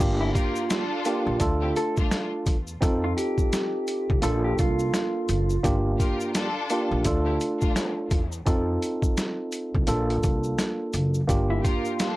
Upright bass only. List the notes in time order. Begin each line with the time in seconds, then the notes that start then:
0.00 G1
1.27 A#1
1.41 D2
2.47 E2
2.82 F2
4.10 C2
4.23 A#1
4.59 C2
5.29 F#1
5.64 G1
6.91 A#1
7.05 D2
8.11 E2
8.47 F2
9.75 C2
9.88 A#1
10.24 C2
10.94 F#1
11.29 G1